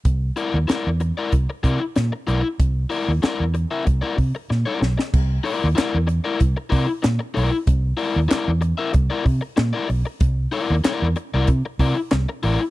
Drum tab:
CC |----------------|----------------|x---------------|----------------|
HH |x-x-x-x-x-x-x-x-|x-o-x-x-x-o-----|--o-x-x-x-o-x-o-|x-o-x-x-x-o-x-o-|
CP |----------------|----------------|----x-------x---|----x-------x---|
SD |----o-------o---|----o-------o-oo|----o-------o---|----o-------o---|
BD |o-------o-o-----|o-------o-o-----|o-------o-o-----|o-------o-o-----|

CC |----------------|
HH |x-o-x-x-x-o-x-o-|
CP |----x-------x---|
SD |----o-------o---|
BD |o-------o-o-----|